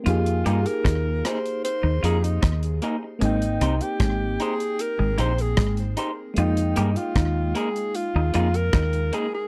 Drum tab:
HH |xxxxx-xxx-xxxxx-|xxxxx-xxx-xxxxx-|xxxxx-xxx-xxxxx-|
SD |----r-r-----r---|----r-------r---|----r-------r---|
BD |----o-------o---|----o-------o---|----o-------o---|